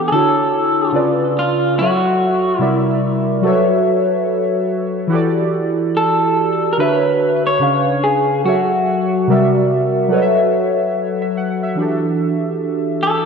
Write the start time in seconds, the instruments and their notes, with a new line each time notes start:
Already playing: synth keys E3 B3 D4 G4 A4 F#5
0.08 synth keys D3, clean electric guitar G#4
0.12 synth keys D4 E4 F#4 C#5, clean electric guitar A4
0.92 synth keys C#3 C#4 F4 B4 D5
1.39 clean electric guitar F4
1.79 synth keys F#3 F#4 A4 C#5, clean electric guitar F#4
1.83 synth keys E5
2.59 synth keys C3 G3 A#4 D5 E5, clean electric guitar E4
3.41 synth keys F#3 F#4 A4 B4
3.47 synth keys C#5 E5
5.07 synth keys E3 E4 F#4
5.12 synth keys G4 A4 D5
5.97 clean electric guitar A4
6.73 clean electric guitar A#4
6.77 synth keys D3 D4 F#4 C#5 E5, clean electric guitar B4
7.47 clean electric guitar C#5
7.59 synth keys C#3 C#4 D4 B4 F5
8.04 clean electric guitar G#4
8.44 synth keys F#3 F#4 A4 C#5, clean electric guitar F#4
8.49 synth keys E5
9.27 synth keys C3 G3 A#4 D5 E5
10.08 synth keys F#3 F#4 A4 B4
10.13 synth keys C#5 D#5
10.22 synth keys E5
11.22 synth keys E5
11.37 synth keys F#5
11.63 synth keys E5
11.75 synth keys E3 D4 F#4
11.81 synth keys G4 A4
13.03 clean electric guitar A4